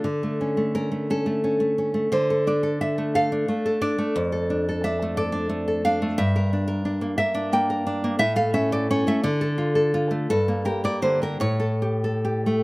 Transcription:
\new Staff \with { instrumentName = "Nylon-string guitar" } { \time 6/8 \key d \minor \tempo 4. = 58 << { a'4 bes'8 a'4. | c''8 d''8 e''8 f''4 d''8~ | d''4 e''8 d''4 f''8 | e''4. e''8 g''4 |
e''16 f''16 e''16 d''16 cis''16 e''16 d''4 r8 | a'8 bes'16 d''16 c''16 bes'16 cis''4. | } \\ { d16 a16 cis'16 a16 cis'16 a16 cis'16 a16 cis'16 a16 cis'16 a16 | d16 a'16 d'16 a'16 d'16 a16 a'16 d'16 a16 a'16 d'16 a16 | f,16 a'16 d'16 a'16 d'16 a16 a'16 d'16 a16 a'16 d'16 a16 | g,16 bes'16 d'16 bes'16 d'16 bes16 bes'16 d'16 bes16 bes'16 d'16 bes16 |
a,16 a'16 cis'16 a'16 cis'16 a16 d16 a'16 f'16 a'16 f'16 a16 | g,16 bes16 g'16 bes16 d16 g'16 a,16 a'16 g'16 a'16 g'16 a16 | } >> }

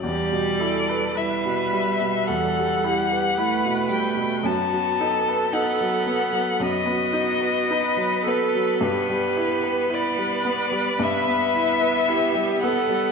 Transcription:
<<
  \new Staff \with { instrumentName = "Violin" } { \time 4/4 \key e \minor \tempo 4 = 55 d''4 e''4 fis''4. g''8 | a''4 fis''4 dis''4. b'8 | b'4 d''4 e''4. fis''8 | }
  \new Staff \with { instrumentName = "Viola" } { \time 4/4 \key e \minor g'8 a'8 b'4 a'8 g'8 b'4 | fis'8 a'4. fis'4 b'8 a'8 | g'4 b'2 g'8 a'8 | }
  \new Staff \with { instrumentName = "Cello" } { \time 4/4 \key e \minor g4 g2 a4 | b4 b4 b2 | b2 b2 | }
  \new Staff \with { instrumentName = "Grand piano" } { \time 4/4 \key e \minor e,16 b,16 e'16 b'16 e'16 b,16 g16 b,16 e,16 g16 e'16 b'16 e'16 b,16 g16 b,16 | fis,16 fis16 dis'16 b'16 dis'16 fis16 b16 fis16 fis,16 b16 dis'16 b'16 dis'16 fis16 b16 fis16 | g,16 g16 e'16 b'16 e'16 g16 b16 g16 g,16 b16 e'16 b'16 e'16 g16 b16 g16 | }
>>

